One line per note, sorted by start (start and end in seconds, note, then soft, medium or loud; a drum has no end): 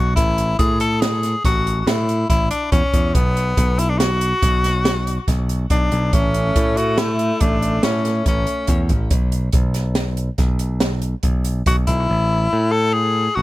0.00 0.14 B1 medium
0.00 0.13 F#4 medium
0.16 0.54 A1 medium
0.16 0.56 E4 loud
0.16 kick medium
0.16 closed hi-hat medium
0.38 closed hi-hat medium
0.59 1.34 A2 medium
0.59 0.79 G#4 loud
0.59 kick loud
0.59 closed hi-hat medium
0.80 1.03 A4 loud
0.80 closed hi-hat medium
1.01 1.44 G#4 medium
1.01 snare loud
1.01 closed hi-hat medium
1.23 snare soft
1.23 closed hi-hat medium
1.45 1.82 A1 medium
1.45 1.81 F#4 medium
1.45 kick loud
1.45 snare soft
1.45 closed hi-hat medium
1.67 closed hi-hat medium
1.81 1.89 F#4 medium
1.87 2.24 A2 medium
1.87 2.29 E4 medium
1.87 snare loud
1.87 closed hi-hat medium
2.09 closed hi-hat medium
2.29 2.48 A1 medium
2.29 2.49 E4 medium
2.29 kick medium
2.29 closed hi-hat medium
2.51 2.71 D4 medium
2.51 closed hi-hat medium
2.72 2.81 E2 medium
2.72 3.16 C#4 medium
2.72 kick loud
2.72 closed hi-hat medium
2.94 3.12 E2 medium
2.94 kick medium
2.94 closed hi-hat medium
3.15 3.52 B1 medium
3.15 3.81 B3 medium
3.15 kick loud
3.15 closed hi-hat medium
3.37 closed hi-hat medium
3.57 4.32 B1 loud
3.57 kick medium
3.57 closed hi-hat medium
3.79 3.91 E4 medium
3.79 closed hi-hat medium
3.89 4.00 D4 medium
3.98 5.42 F#4 medium
3.98 snare medium
3.98 closed hi-hat medium
4.21 closed hi-hat medium
4.43 5.17 B1 medium
4.43 kick loud
4.43 closed hi-hat medium
4.64 snare soft
4.64 closed hi-hat medium
4.85 snare loud
4.85 closed hi-hat medium
5.07 closed hi-hat medium
5.28 5.65 B1 medium
5.28 kick medium
5.28 snare soft
5.28 closed hi-hat medium
5.49 closed hi-hat medium
5.70 5.89 B1 medium
5.70 6.15 D4 medium
5.70 kick medium
5.70 closed hi-hat medium
5.92 6.11 B1 medium
5.92 closed hi-hat medium
6.12 6.50 A1 medium
6.12 9.07 A3 loud
6.12 6.79 C#4 medium
6.12 kick loud
6.12 closed hi-hat medium
6.34 closed hi-hat medium
6.56 7.31 A2 medium
6.56 kick medium
6.56 closed hi-hat medium
6.77 7.01 F#4 medium
6.77 closed hi-hat medium
6.98 7.42 E4 medium
6.98 snare medium
6.98 closed hi-hat medium
7.19 closed hi-hat medium
7.41 7.78 A1 medium
7.41 7.83 D4 medium
7.41 kick loud
7.41 closed hi-hat medium
7.62 closed hi-hat medium
7.83 8.21 A2 medium
7.83 8.23 C#4 medium
7.83 snare loud
7.83 closed hi-hat medium
8.05 snare soft
8.05 closed hi-hat medium
8.26 8.45 A1 medium
8.26 8.86 C#4 medium
8.26 kick medium
8.26 closed hi-hat medium
8.47 closed hi-hat medium
8.67 8.91 E2 medium
8.67 kick loud
8.67 closed hi-hat medium
8.89 9.08 A1 medium
8.89 kick medium
8.89 closed hi-hat medium
9.11 9.48 B1 medium
9.11 kick loud
9.11 closed hi-hat medium
9.32 closed hi-hat medium
9.53 10.29 B1 medium
9.53 kick loud
9.53 closed hi-hat medium
9.74 snare soft
9.74 closed hi-hat medium
9.95 snare loud
9.95 closed hi-hat medium
10.17 closed hi-hat medium
10.38 11.14 B1 medium
10.38 kick medium
10.38 snare soft
10.38 closed hi-hat medium
10.59 closed hi-hat medium
10.80 snare loud
10.80 closed hi-hat medium
11.02 closed hi-hat medium
11.23 11.61 B1 medium
11.23 kick medium
11.23 closed hi-hat medium
11.45 closed hi-hat medium
11.66 11.85 B1 medium
11.66 11.77 F#4 medium
11.66 kick loud
11.66 closed hi-hat medium
11.87 12.06 B1 medium
11.87 12.73 E4 loud
11.87 kick medium
11.87 closed hi-hat medium
12.10 12.47 A1 medium
12.53 13.27 A2 medium
12.72 12.95 A4 medium
12.93 13.37 G#4 medium
13.35 13.42 A1 medium
13.35 13.42 F#4 medium